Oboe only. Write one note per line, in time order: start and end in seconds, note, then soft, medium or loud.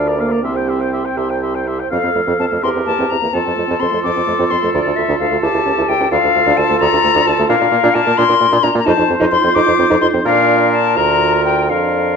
0.08 0.22 D5 medium
0.21 0.34 F5 medium
0.32 0.44 D5 medium
0.44 0.58 E5 medium
0.57 0.70 G5 medium
0.69 0.83 E5 medium
0.81 0.92 G5 medium
0.93 1.07 E5 medium
1.05 1.19 G5 soft
1.17 1.32 E5 medium
1.31 1.42 G5 medium
1.43 1.56 E5 medium
1.55 1.69 G5 medium
1.68 1.81 E5 medium
1.80 1.90 G5 soft
1.91 2.65 F5 medium
2.63 3.18 A#4 medium
3.35 6.08 A4 medium
6.11 7.46 A4 medium
7.50 8.57 A#4 medium
8.86 10.21 C5 loud
10.25 10.93 A#4 loud
10.97 11.69 A#4 medium
11.70 12.16 A#4 medium